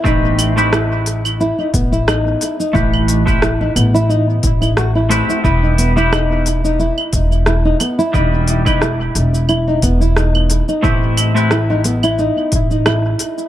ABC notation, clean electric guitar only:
X:1
M:4/4
L:1/16
Q:"Swing 16ths" 1/4=89
K:Ador
V:1 name="Clean electric guitar"
[E,A,CGB]3 [A,CEGB] z12 | [E,A,GB]3 [A,CEGB] z8 z2 [A,CEGB]2 | [G,B,EGB]3 [G,B,EGB] z12 | [E,G,B,GB]3 [G,B,EGB] z12 |
[A,CEGB]3 [A,CEGB] z12 |]